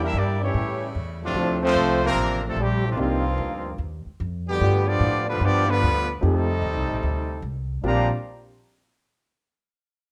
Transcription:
Already playing: E2 D3 G3 A#3 E4
0.00 G3 A#3 E4
0.05 D4 G4 A#4 E5
0.14 G2 G3 A#3 D4 G4
0.18 E4 D5
0.42 E3 G3 A3 C#4 E4 G4 C#5
0.54 A2 C#3 G3 A3
0.95 E2
1.22 A2 C3 F3 A3 C4 D4 F4
1.34 D2 F3 C4 D4 F4 C5
1.63 F3 A3 C4 D4 F4
1.67 C5
1.75 C2
2.03 C3 F3 A#3 C4 D4 A#4
2.15 A1
2.46 C3 F3 A3 C4 D4 A4
2.56 A#1 G3
2.61 A3 C4 G4
2.85 A2 C3 F3
2.90 A3 C4 D4 F4
2.97 C2 G2 A#2 F3 A#3 C4 D4 D#4 G4
3.01 A#3 C4 D#4 F4
3.38 D2
3.78 D#2
4.06 muted upright bass stroke
4.20 F2
4.47 B2 D3 G3 B3 D4 G4
4.61 G2 A3 B3 D4 F4 G4
4.86 F3 B3 D4 F4 G4 D5
5.00 A2
5.27 D3 F3 G3 B3 D4 F4 B4
5.41 G2 F3 B3 D4 F4 G4 D5
5.67 D3 F3 G3 B3 D4 F4 B4
5.83 D2
6.21 F2 A3 C4 D#4 F4 G4
6.25 C3 G3 C4 D#4 A4
6.62 D#2
6.76 C2
6.91 A1
7.03 D2
7.42 C2
7.83 A#1 A#2 F3 G3 A#3 C4 D4 F4 G4 D5 F5 A#5

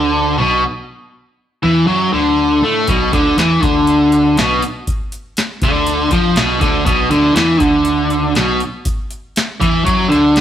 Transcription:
Already playing: D2 D3
0.38 B1 B2
1.63 E2 E3
1.87 F#2 F#3
2.13 D2 D3
2.61 A2 A3
2.88 B1 B2, kick, closed hi-hat
3.13 D2 D3, kick, closed hi-hat
3.37 E2 E3, snare, closed hi-hat
3.62 D2 D3, kick, closed hi-hat
3.87 closed hi-hat
4.12 closed hi-hat
4.36 B1 B2, snare, closed hi-hat
4.62 closed hi-hat
4.87 kick, closed hi-hat
5.12 closed hi-hat
5.37 snare, closed hi-hat
5.62 D2 D3, kick, closed hi-hat
5.87 closed hi-hat
6.11 F2 F3, kick, closed hi-hat
6.36 B1 B2, snare, closed hi-hat
6.61 D2 D3, kick, closed hi-hat
6.85 B1 B2, kick, closed hi-hat
7.11 D2 D3, closed hi-hat
7.35 E2 E3, snare, closed hi-hat
7.60 D2 D3, kick, closed hi-hat
7.85 closed hi-hat
8.10 closed hi-hat
8.35 B1 B2, snare, closed hi-hat
8.60 closed hi-hat
8.85 kick, closed hi-hat
9.11 closed hi-hat
9.36 snare, closed hi-hat
9.61 E2 E3, kick, closed hi-hat
9.85 F#2 F#3, kick, closed hi-hat
10.10 D2 D3, closed hi-hat
10.36 snare, closed hi-hat

